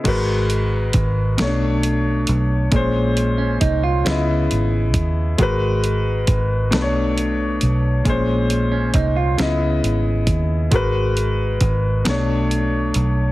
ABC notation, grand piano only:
X:1
M:6/8
L:1/8
Q:3/8=45
K:Blyd
V:1 name="Grand piano"
[G,FAB]3 [B,,=A,C=Dc]3 | [A,,G,C^B]3 [C,=B,=Ed]3 | [G,FAB]3 [B,,=A,=DBc]3 | [A,,G,C^B]3 [C,=B,=Ed]3 |
[G,FAB]3 [B,,=A,=Dc]3 |]